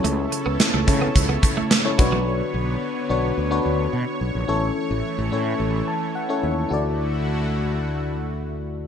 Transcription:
<<
  \new Staff \with { instrumentName = "FM electric piano" } { \time 4/4 \key d \major \tempo 4 = 108 << { r1 | r1 | r2 r8 a''8 fis''8 e''8 | r1 | } \\ { <cis' e' a' cis''>4 r8 <cis' e' a' cis''>4~ <cis' e' a' cis''>16 r8 <cis' e' a' cis''>16 <d' fis' b' cis''>8~ | <d' fis' b' cis''>4 r8 <d' fis' b' cis''>8 r16 <d' fis' b' cis''>4~ <d' fis' b' cis''>16 r8 | <cis' e' a' cis''>4 r8 <cis' e' a' cis''>4~ <cis' e' a' cis''>16 r8 <cis' e' a' cis''>8 r16 | <e' fis' a' d''>1 | } >> }
  \new Staff \with { instrumentName = "Analog synth pad" } { \time 4/4 \key d \major <cis e' a' cis''>2.~ <cis e' a' cis''>8 <d b>8~ | <d b>1 | <e a>1 | <d a e' fis'>1 | }
  \new Staff \with { instrumentName = "Clean electric guitar" } { \time 4/4 \key d \major a16 r8 b16 r16 a16 r16 b16 r16 b16 r16 a16 a16 r8 fis16 | r1 | r1 | r1 | }
  \new Staff \with { instrumentName = "Fretless electric bass" } { \clef bass \time 4/4 \key d \major cis,8 r16 cis,16 r16 cis,16 cis8 cis,8 r4 b,,8~ | b,,8 b,,8 r8 b,,8 d,8 d,8 b,16 r16 b,,16 bes,,16 | a,,8 r16 a,,16 r16 a,,16 a,8 a,,8 r4 ees,8 | d,1 | }
  \new DrumStaff \with { instrumentName = "Drums" } \drummode { \time 4/4 hh8 hh8 <hh sn>8 <hh bd>8 <hh bd>8 <hh bd>8 <hh sn>8 <hh bd>8 | r4 r4 r4 r4 | r4 r4 r4 r4 | r4 r4 r4 r4 | }
>>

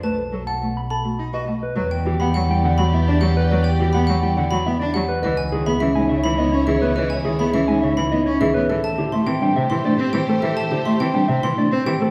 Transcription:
<<
  \new Staff \with { instrumentName = "Xylophone" } { \time 3/4 \key b \minor \tempo 4 = 104 a''16 r8 fis''16 r8 b''16 r4 r16 | \key e \minor r16 g''16 r16 b''16 fis''16 r8 b''16 r8 fis''16 r16 | r16 g''16 r16 b''16 fis''16 r8 b''16 r8 fis''16 r16 | dis''16 gis''16 r16 b''16 e''16 r8 b''16 r8 e''16 r16 |
dis''16 gis''16 r16 b''16 e''16 r8 b''16 r8 e''16 r16 | e''16 a''16 r16 c'''16 g''16 r8 c'''16 r8 g''16 r16 | e''16 a''16 r16 c'''16 g''16 r8 c'''16 r8 g''16 r16 | }
  \new Staff \with { instrumentName = "Clean electric guitar" } { \time 3/4 \key b \minor b'16 r16 a'16 a''16 r16 b''16 a''16 r8 dis''16 r16 b'16 | \key e \minor b'16 r16 g'16 fis''16 r16 g''16 fis''16 r16 e''16 d''16 r16 b'16 | b'16 r16 g'16 fis''16 r16 g''16 fis''16 r16 e''16 d''16 r16 b'16 | b'16 r16 gis'16 e''16 r16 gis''16 e''16 r16 dis''16 cis''16 r16 b'16 |
b'16 r16 gis'16 e''16 r16 gis''16 e''16 r16 dis''16 cis''16 r16 b'16 | a'16 r16 g'16 e''16 r16 g''16 e''16 r16 d''16 c''16 r16 a'16 | a'16 r16 g'16 e''16 r16 g''16 e''16 r16 d''16 c''16 r16 a'16 | }
  \new Staff \with { instrumentName = "Violin section" } { \time 3/4 \key b \minor r2. | \key e \minor <g' d''>2.~ | <g' d''>2~ <g' d''>8. r16 | <e' cis''>2.~ |
<e' cis''>2~ <e' cis''>8. r16 | <g' c''>2.~ | <g' c''>2~ <g' c''>8. r16 | }
  \new Staff \with { instrumentName = "Marimba" } { \time 3/4 \key b \minor r16 a'16 b'16 r8. a'16 fis'16 r16 b'16 fis''16 dis''16 | \key e \minor b'16 r16 fis'16 g'16 r16 e'16 d''16 fis'16 e'16 d'16 g'16 d''16 | b'16 r16 fis'16 g'16 r16 e'16 d''16 fis'16 e'16 d'16 g'16 d''16 | b'16 r16 e'16 gis'16 cis'16 dis'16 cis''16 e'16 dis'16 cis'16 gis'16 cis''16 |
b'16 r16 e'16 gis'16 cis'16 dis'16 cis''16 e'16 dis'16 cis'16 gis'16 cis''16 | a'16 a'16 e'16 g'16 c'16 d'16 c''16 e'16 d'16 c'16 g'16 c''16 | a'16 a'16 e'16 g'16 c'16 d'16 c''16 e'16 d'16 c'16 g'16 c''16 | }
  \new Staff \with { instrumentName = "Cello" } { \clef bass \time 3/4 \key b \minor a16 r16 fis16 r16 a16 r8 a16 dis'16 fis'16 a16 r16 | \key e \minor fis16 r16 e16 b16 fis16 g16 d16 fis16 b16 d'16 fis16 r16 | fis16 r16 e16 b16 fis16 g16 d16 fis16 b16 d'16 fis16 r16 | e16 r16 dis16 b16 e16 gis16 cis16 e16 b16 cis'16 e16 b16 |
e16 r16 dis16 b16 e16 gis16 cis16 e16 b16 cis'16 e16 b16 | e16 r16 d16 a16 e16 g16 c16 e16 a16 c'16 e16 a16 | e16 r16 d16 a16 e16 g16 c16 e16 a16 c'16 e16 a16 | }
  \new Staff \with { instrumentName = "Double bass section" } { \clef bass \time 3/4 \key b \minor b,,2. | \key e \minor e,2.~ | e,2. | cis,2.~ |
cis,2. | a,2.~ | a,2. | }
>>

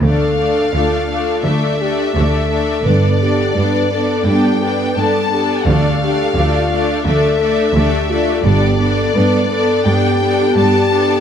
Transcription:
<<
  \new Staff \with { instrumentName = "Violin section" } { \time 4/4 \key d \dorian \tempo 4 = 85 f''2 e''2 | d''2 g''4 a''4 | f''2 e''2 | d''2 g''4 a''4 | }
  \new Staff \with { instrumentName = "Violin section" } { \time 4/4 \key d \dorian <a' d''>8 <a' d''>8 <a' d''>8 <a' d''>8 <a' d''>8 <a' d''>8 <a' d''>8 <a' d''>8 | <a' d''>8 <a' d''>8 <a' d''>8 <a' d''>8 <a' d''>8 <a' d''>8 <a' d''>8 <a' d''>8 | <a' d''>8 <a' d''>8 <a' d''>8 <a' d''>8 <a' d''>8 <a' d''>8 <a' d''>8 <a' d''>8 | <a' d''>8 <a' d''>8 <a' d''>8 <a' d''>8 <a' d''>8 <a' d''>8 <a' d''>8 <a' d''>8 | }
  \new Staff \with { instrumentName = "French horn section" } { \time 4/4 \key d \dorian a'4 f'4 a'8 g'8 a'4 | b'8 g'8 b'8 a'8 g'8 b'8 a'8 g'8 | a'8 g'8 f'4 a'4 g'8 f'8 | g'8 a'8 b'8 a'8 g'2 | }
  \new Staff \with { instrumentName = "Viola section" } { \time 4/4 \key d \dorian <a d'>8 <a d'>8 <a d'>8 <a d'>8 <a d'>8 <a d'>8 <a d'>8 <a d'>8 | <b d'>8 <b d'>8 <b d'>8 <b d'>8 <b d'>8 <b d'>8 <b d'>8 <b d'>8 | <a d'>8 <a d'>8 <a d'>8 <a d'>8 <a d'>8 <a d'>8 <a d'>8 <a d'>8 | <b d'>8 <b d'>8 <b d'>8 <b d'>8 <b d'>8 <b d'>8 <b d'>8 <b d'>8 | }
  \new Staff \with { instrumentName = "Cello section" } { \clef bass \time 4/4 \key d \dorian d,4 d,4 d,4 d,4 | g,4 g,4 g,4 g,4 | d,4 d,4 d,4 d,4 | g,4 g,4 g,4 g,4 | }
  \new Staff \with { instrumentName = "Double bass section" } { \clef bass \time 4/4 \key d \dorian d,4 r2. | g,,4 r2. | d,4 r2. | g,,4 r2. | }
>>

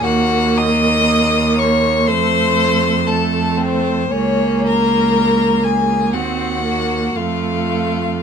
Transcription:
<<
  \new Staff \with { instrumentName = "Violin" } { \time 4/4 \key bes \minor \tempo 4 = 59 ges''8 ees'''4 des'''8 c'''4 a''8 c''8 | des''8 bes''4 aes''8 ges''4 f''4 | }
  \new Staff \with { instrumentName = "Violin" } { \time 4/4 \key bes \minor ges'8 ees''4 des''8 c''4 a'8 c'8 | des'8 bes'4 aes'8 ges'4 f'4 | }
  \new Staff \with { instrumentName = "Viola" } { \time 4/4 \key bes \minor bes2 a4 a4 | bes2 c'8 bes8 a4 | }
  \new Staff \with { instrumentName = "Cello" } { \clef bass \time 4/4 \key bes \minor ees,2 f,2 | des,2 ees,4 f,4 | }
>>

